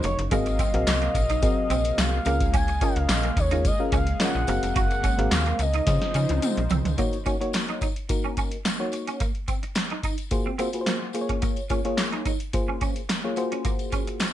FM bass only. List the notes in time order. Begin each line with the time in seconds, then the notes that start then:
0.04 F1
0.19 F#1
0.32 G#1
0.74 A#1
0.87 C2
1.15 A#1
1.70 A#1
1.98 C2
2.26 C#2
2.96 C#2
3.09 A#1
3.37 D#2
3.92 C#2
4.35 A#1
4.48 F#1
4.63 F1
4.76 F#1
5.19 G#1
5.31 D#2
5.59 C#2
5.87 C#3
6.15 C#3
6.30 C#2
6.58 A#1
6.71 C2
6.85 C#2